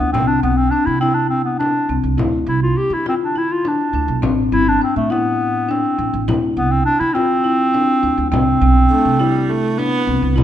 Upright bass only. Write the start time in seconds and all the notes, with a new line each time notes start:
0.00 D2
0.14 C2
0.43 B1
0.87 C3
1.89 C2
2.03 C2
2.17 D2
2.46 C2
2.90 D3
3.93 D2
4.08 B1
4.23 A1
4.52 G1
4.96 A2
5.99 A1
6.13 A1
6.28 D2
6.57 C2
7.00 D3
8.03 D2
8.18 D2
8.32 C2
8.61 B1
9.05 C3
10.07 C2
10.22 C2
10.37 D2